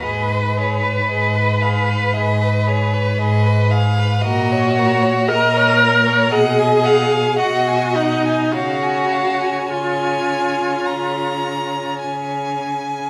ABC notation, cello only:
X:1
M:4/4
L:1/8
Q:1/4=56
K:G#dor
V:1 name="Cello" clef=bass
G,,2 G,,2 G,,2 G,,2 | A,,2 A,,2 B,,2 B,,2 | C,2 C,2 C,2 C,2 |]